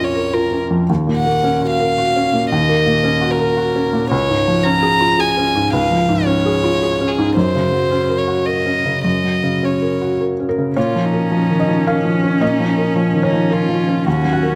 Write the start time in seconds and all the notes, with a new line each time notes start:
Already playing: A#1 F2 A#3 C#4 F4
0.05 C#5
0.15 A#4
0.33 F4 A#4
0.52 C#4
0.70 F2
0.89 D#2
1.07 A#2
1.17 F#5
1.25 A#3
1.43 C#4
1.62 F#4
1.71 F5
1.80 A#4
1.98 F#4
2.16 C#4
2.33 A#2
2.51 D#2 D#5
2.69 A#3
2.86 A#2
3.04 C#4
3.21 F#4
3.31 A#4
3.39 A#4
3.57 F#4
3.75 C#4
3.93 A#2
4.10 C#2 C#5
4.29 G#2
4.48 F3
4.64 C#4 A#5
4.82 G#4
5.01 F4
5.19 G#4 G#5
5.38 C#4
5.55 G#2
5.73 C#2 F5
5.91 F3
6.09 G#2
6.26 C#4 C#5
6.46 G#4
6.64 F4
6.82 G#4
7.01 C#4
7.08 G#4
7.18 G#2
7.36 F#2 C5
7.55 C#3
7.72 F#3
7.91 C#4
8.09 A#4
8.18 C#5
8.28 F#4
8.46 A#4 D#5
8.66 C#4
8.85 C#3
9.04 F#2 D#5
9.24 F#3
9.43 C#3
9.63 C#4 C#5
9.82 A#4
10.02 F#4
10.21 A#4
10.40 C#4
10.49 A#4
10.58 C#3
10.76 A#2 C#4 F4 C#5
10.96 F3
11.05 D#4
11.13 A#4
11.32 F3
11.50 D#3
11.60 D#5
11.68 F3
11.87 C#4 A#4 F5
12.05 F3
12.23 C#4
12.41 A#2 D#4 D#5
12.60 F3
12.78 A#4
12.96 F3 C#4
13.14 D#3
13.23 D#4 C#5
13.33 F3
13.51 F4 A#4
13.69 F3
13.88 C#4
14.06 D#2 C#4 F#4
14.24 F#3
14.33 F#5
14.43 A#4